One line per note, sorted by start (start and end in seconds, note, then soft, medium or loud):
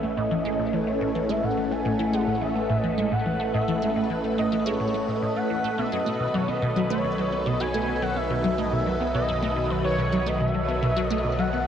0.00 5.75 A1 medium
0.00 5.78 A2 medium
0.00 5.78 A3 medium
0.00 0.10 A3 medium
0.00 7.97 C#4 medium
0.00 11.67 A4 medium
0.00 11.67 B4 medium
0.00 0.17 E5 loud
0.17 0.24 A2 loud
0.17 0.75 D#5 loud
0.31 0.35 E3 loud
0.45 0.55 G#3 loud
0.59 0.66 A2 medium
0.73 0.83 E3 medium
0.73 0.90 B4 medium
0.87 0.94 A3 medium
0.87 1.32 C#5 loud
1.01 1.08 A2 loud
1.15 1.19 E3 loud
1.29 1.40 G#3 loud
1.29 1.46 E5 loud
1.43 1.50 A2 medium
1.43 1.74 F#5 medium
1.57 1.68 E3 medium
1.71 1.78 A3 medium
1.71 2.16 G#5 loud
1.85 1.92 A2 loud
1.99 2.04 E3 loud
2.13 2.24 G#3 loud
2.13 2.42 F#5 medium
2.27 2.34 A2 medium
2.42 2.52 E3 medium
2.42 2.80 E5 medium
2.56 2.62 A3 medium
2.70 2.76 A2 loud
2.80 2.88 E3 loud
2.80 2.98 D#5 medium
2.98 3.08 G#3 medium
2.98 3.13 D#5 medium
3.12 3.19 A2 medium
3.12 3.53 F#5 loud
3.26 3.36 E3 medium
3.40 3.47 A3 medium
3.54 3.61 A2 loud
3.54 4.06 E5 medium
3.68 3.72 E3 loud
3.82 3.92 G#3 loud
3.96 4.03 A2 medium
4.10 4.20 E3 medium
4.24 4.31 A3 medium
4.38 4.45 A2 loud
4.38 4.64 D#5 medium
4.52 4.56 E3 loud
4.66 4.76 G#3 loud
4.66 5.24 C#5 loud
4.80 4.87 A2 medium
4.94 4.98 A3 medium
5.08 5.18 A2 medium
5.22 5.29 A2 medium
5.22 5.38 D#5 loud
5.36 5.40 A3 medium
5.36 5.80 F#5 loud
5.50 5.60 E3 medium
5.64 5.68 A3 loud
5.78 11.67 B1 medium
5.78 5.85 B2 loud
5.78 11.67 B2 medium
5.78 5.94 E5 loud
5.92 5.96 F#3 loud
5.92 6.36 D#5 loud
5.99 11.67 F#3 medium
6.06 11.67 D#3 medium
6.06 6.16 A3 loud
6.20 6.27 B2 medium
6.34 6.44 F#3 medium
6.34 6.50 C#5 loud
6.48 6.55 B3 medium
6.48 6.90 D#5 loud
6.62 6.69 B2 loud
6.76 6.80 F#3 loud
6.90 7.00 A3 loud
6.90 7.48 C#5 loud
7.04 7.11 B2 medium
7.18 7.28 F#3 medium
7.32 7.39 B3 medium
7.46 7.53 B2 loud
7.46 7.62 D#5 loud
7.60 7.64 F#3 loud
7.60 8.04 G#5 loud
7.74 7.84 A3 loud
7.88 7.95 B2 medium
8.02 8.12 F#3 medium
8.02 8.18 F#5 loud
8.16 8.23 B3 medium
8.16 8.60 E5 loud
8.30 8.37 B2 loud
8.44 8.48 F#3 loud
8.58 8.68 A3 loud
8.58 8.74 D#5 loud
8.72 8.79 B2 medium
8.72 9.14 E5 loud
8.86 8.97 F#3 medium
9.01 9.07 B3 medium
9.14 9.21 B2 loud
9.14 9.72 D#5 loud
9.29 9.33 F#3 loud
9.43 9.53 A3 loud
9.56 9.63 B2 medium
9.70 9.81 F#3 medium
9.70 9.84 B4 medium
9.84 9.91 B3 medium
9.84 10.28 C#5 loud
9.98 10.05 B2 loud
10.13 10.17 F#3 loud
10.26 10.37 A3 loud
10.26 10.40 D#5 loud
10.41 10.47 B2 medium
10.41 11.04 E5 loud
10.55 10.65 F#3 medium
10.69 10.75 B3 medium
10.83 10.90 B2 loud
10.97 11.01 F#3 loud
11.04 11.41 D#5 loud
11.11 11.21 A3 loud
11.25 11.32 B2 medium
11.39 11.49 F#3 medium
11.39 11.67 F#5 loud
11.53 11.60 B3 medium